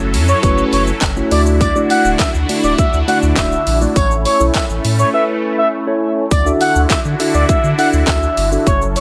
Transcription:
Already playing: F#3 A3 C#4 E4 F#4 A4 C#5
0.00 F#1
0.14 F#2, open hi-hat, tambourine, shaker
0.28 C#5, shaker
0.43 F#1 A3 C#4 E4 F#4 B4 C#5, kick, closed hi-hat, tambourine, shaker
0.58 shaker
0.72 F#1 C#5, open hi-hat, tambourine, shaker
0.87 shaker
1.01 F#1, kick, snare, clap, closed hi-hat, tambourine, shaker
1.16 A3 C#4 E4 F#4 C#5, shaker
1.31 D2 D3 A3 D4 E4 F#4 D5, open hi-hat, tambourine, shaker
1.46 shaker
1.61 D5, kick, closed hi-hat, tambourine, shaker
1.75 A3 D4 E4 F#4 D5, shaker
1.90 F#5, open hi-hat, tambourine, shaker
2.05 D1, shaker
2.19 D2 E5, kick, snare, clap, closed hi-hat, tambourine, shaker
2.34 D2, shaker
2.49 A3 D4 E4 F#4 D5, open hi-hat, tambourine, shaker
2.64 D1 D5, shaker
2.78 D2 E5, kick, closed hi-hat, shaker
2.93 D2, shaker
3.08 A3 D4 E4 F#4 D5 F#5, open hi-hat, shaker
3.23 D2, shaker
3.36 D1 E5, kick, snare, clap, closed hi-hat, tambourine, shaker
3.52 shaker
3.67 A#1, open hi-hat, tambourine, shaker
3.81 A3 D4 E4 F#4 D5, shaker
3.96 A1 A3 C#4 C#5, kick, closed hi-hat, tambourine, shaker
4.11 shaker
4.25 C#5, open hi-hat, tambourine, shaker
4.40 B1 E4 A4 C#5, shaker
4.54 E5, kick, snare, clap, closed hi-hat, tambourine, shaker
4.70 A1, shaker
4.84 A2, open hi-hat, tambourine, shaker
4.99 C#5, shaker
5.13 E4 A4 B4 E5
5.58 E5
5.87 E4 A4 C#5
6.31 D2 D3 D4 E4 F#4 D5, kick, closed hi-hat, tambourine, shaker
6.46 D4 E4 F#4 A4 E5, shaker
6.61 F#5, open hi-hat, tambourine, shaker
6.76 D2, shaker
6.90 D3 E5, kick, snare, clap, closed hi-hat, tambourine, shaker
7.05 D3, shaker
7.19 D4 E4 F#4 A4 E5, open hi-hat, tambourine, shaker
7.34 D2 D5, shaker
7.49 D3 E5, kick, closed hi-hat, shaker
7.64 D3, shaker
7.78 D4 E4 F#4 A4 E5 F#5, open hi-hat, shaker
7.93 D2, shaker
8.07 D2 E5, kick, snare, clap, closed hi-hat, tambourine, shaker
8.23 shaker
8.37 G1, open hi-hat, tambourine, shaker
8.52 D4 E4 F#4 A4 E5, shaker
8.67 F#1 F#3 C#4 E4 A4 C#5, kick, closed hi-hat, shaker
8.82 shaker
8.96 C#5, open hi-hat, shaker

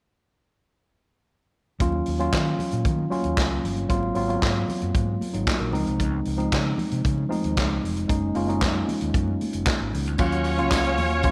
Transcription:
1.80 D#2 F#3 A#3 C#4 F4, kick, closed hi-hat, muted conga
1.92 muted conga
2.06 D#2, open hi-hat
2.19 F#3 A#3 C#4 F4, closed hi-hat
2.32 D#3, kick, snare, clap, closed hi-hat, muted conga
2.46 muted conga
2.59 open hi-hat, high conga, low conga
2.71 A#2, closed hi-hat
2.85 D#3, kick, closed hi-hat, muted conga, high conga, low conga
2.98 muted conga
3.10 F#3 A#3 C#4 F4, open hi-hat, high conga
3.24 D#2, closed hi-hat
3.37 C#2, kick, snare, clap, closed hi-hat, muted conga, high conga
3.64 G1, open hi-hat, low conga
3.77 closed hi-hat
3.89 G#1 F#3 A#3 C4 F4, kick, closed hi-hat, muted conga
4.03 muted conga
4.15 G#1 F#3 A#3 C4 F4, open hi-hat
4.28 F#3 A#3 B3 F4, closed hi-hat
4.36 C4
4.42 G#2, kick, snare, clap, closed hi-hat, muted conga
4.68 open hi-hat, high conga, low conga
4.81 F#2, closed hi-hat
4.95 G#2, kick, closed hi-hat, high conga, low conga
5.21 open hi-hat, high conga
5.34 G#1 F#3 D#4, closed hi-hat
5.47 A#3 F#4, kick, snare, clap, closed hi-hat, muted conga, high conga
5.60 A#1 A#4, muted conga
5.72 C#2 F3 G#3 C4 D#4, open hi-hat, low conga
5.87 C2, closed hi-hat
6.00 C#2, kick, closed hi-hat
6.25 C#2, open hi-hat
6.37 F3 G#3 C4 D#4, closed hi-hat
6.52 C#3, kick, snare, clap, closed hi-hat
6.65 muted conga
6.78 open hi-hat, high conga, low conga
6.91 C3, closed hi-hat
7.04 C#3, kick, closed hi-hat, high conga, low conga
7.18 muted conga
7.29 F3 G#3 C4 D#4, open hi-hat, high conga
7.44 D#2, closed hi-hat
7.57 C#2, kick, snare, clap, closed hi-hat, muted conga, high conga
7.83 F1, open hi-hat, low conga
7.97 closed hi-hat
8.08 F#1 G#3 A#3 C#4 D#4, kick, closed hi-hat
8.22 muted conga
8.35 F#1 G#3 A#3 C#4 F4, open hi-hat
8.48 G#3 A#3 C#4 D#4, closed hi-hat
8.61 F#2, kick, snare, clap, closed hi-hat
8.76 muted conga
8.89 open hi-hat, high conga, low conga
9.01 D#2, closed hi-hat
9.14 F#2, kick, closed hi-hat, muted conga, high conga, low conga
9.28 muted conga
9.41 open hi-hat, high conga
9.53 F#1, closed hi-hat
9.65 kick, snare, clap, closed hi-hat, high conga
9.80 G#1, muted conga
9.93 C#2, open hi-hat, low conga
10.06 D2, closed hi-hat
10.18 D#2 F#3 A#3 C#4 F4 C#5 F5 C#6, kick, crash, tambourine, muted conga
10.31 closed hi-hat, muted conga
10.44 open hi-hat, tambourine
10.57 C#2 F#3 A#3 C#4 F4, closed hi-hat
10.71 C#2, kick, snare, clap, tambourine
10.84 closed hi-hat, muted conga
10.97 D#2, open hi-hat, tambourine, high conga, low conga
11.10 closed hi-hat
11.23 F3 A#3 C#4 F4, kick, closed hi-hat, tambourine, muted conga, high conga

